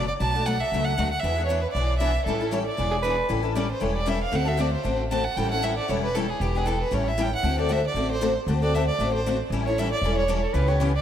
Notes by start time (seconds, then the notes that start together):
Already playing: F#1
0.08 D5
0.20 B1 B2 F#3 A3 D4 F#4 A5
0.35 A3 D4 F#4
0.46 B2 F#3 A3 D4 F#4 F#5
0.60 E5
0.72 C#2 B2 F#3 A3 D4 F#4
0.84 F#5
0.98 D2 B2 F#3 A3 D4 F#4
1.12 F#5
1.20 E2 E5
1.24 E3 B3 D4 G#4
1.37 B3 D4 G#4
1.46 E3 C#5
1.50 B3 D4 G#4
1.62 B4
1.71 B1 E3 D5
1.76 B3 D4 G#4
1.99 E3 B3 D4 G#4 E5
2.26 A1 E3 G3 C#4 E4 A4
2.40 C#4 E4 A4
2.51 E3 G3 C#4 E4 A4 C#5
2.66 D5
2.77 E1 E3 B3 D4 G#4
2.91 G#4
3.02 E3 B3 D4 G#4 B4
3.29 A1 E3 G3 C#4 E4 A4
3.43 C#4 E4 A4
3.55 E3 G3 C#4 E4 A4 D5
3.72 C5
3.80 E1 E3 G3 C#4 E4 A4 C#5
3.96 D5
4.06 E3 G3 C#4 E4 A4 E5
4.23 F5
4.32 D2 D3 A3 C4 F#4 A4 F#5
4.45 C4 F#4 A4 E5
4.57 D3 A3 C4 F#4 A4 D5
4.73 C5
4.83 A1 D3 A3 C4 F#4 A4
5.11 D3 A3 C4 F#4 A4 A5
5.24 F#5
5.37 A1 E3 G3 C#4 E4 A4 G5
5.51 C#4 E4 A4 F#5
5.62 E3 G3 C#4 E4 A4 E5
5.77 D5
5.88 E1 E3 G3 C#4 E4 A4 C#5
6.04 B4
6.15 E3 G3 C#4 E4 A4
6.30 G#4
6.40 E1 E3 B3 D4 G4
6.55 B3 D4 G4 G#4
6.66 E3 B3 D4 G4 A4
6.81 B4
6.91 A1 E3 G3 C#4 E4 A4 C#5
7.08 E5
7.18 E3 G3 C#4 E4 A4 G5
7.36 F#5
7.43 D2 D3 A3 C4 F#4 A4
7.58 C4 F#4 A4 D5
7.69 D3 A3 C4 F#4 A4 E5
7.87 D5
7.94 A1 D3 A3 C4 F#4 A4
8.11 C5
8.21 D3 A3 C4 F#4 A4
8.47 D2 D3 A3 C4 F#4 A4
8.62 C4 F#4 A4 D5
8.74 D3 A3 C4 F#4 A4 E5
8.88 D5
8.99 A1 D3 A3 C4 F#4 A4
9.14 C5
9.26 D3 A3 C4 F#4 A4
9.50 A1 E3 G3 C#4 E4 A4
9.65 E4 A4 C#5
9.70 C#4
9.78 E3 G3 C#4 E4 A4 E5
9.92 D5
10.01 E1 E3 G3 C#4 A4
10.06 E4
10.18 C#5
10.28 E3 G3 C#4 E4 A4
10.42 A4
10.54 C#2 C#3 E3 B3 C#4 G4 B4
10.67 B3 C#4 G4 C#5
10.80 C#3 E3 B3 C#4 G4
10.96 D5